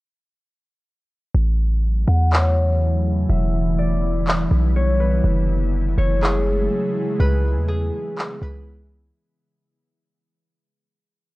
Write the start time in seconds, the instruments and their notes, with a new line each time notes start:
1.34 808-style bass A1, ambient pad C#3 E3 F#3 A3 E4
2.07 808-style bass E2, harp F#5
2.32 harp C#5, clap
3.29 808-style bass E1, ambient pad D3 G3 B3, harp E5
3.78 harp D5
4.28 clap
4.51 808-style bass B1
4.76 harp C#5
5.00 harp B4
5.24 808-style bass F#1, ambient pad C#3 F#3 G#3 A3
5.98 808-style bass F#1, harp C#5
6.22 harp G#4, clap
7.20 808-style bass C#2, ambient pad E3 B3, harp B4
7.56 808-style bass E2
7.68 harp G#4
8.18 clap
8.42 808-style bass C#2, harp B4